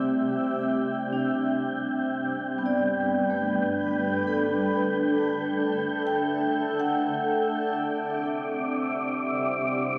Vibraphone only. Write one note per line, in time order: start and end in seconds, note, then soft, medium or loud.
0.00 1.35 A3 medium
1.13 2.77 D4 soft
2.58 3.50 B3 soft
2.66 4.74 D5 medium
3.30 5.39 A3 soft
4.27 6.37 A4 medium
6.07 7.00 G5 medium
6.80 8.89 F#5 medium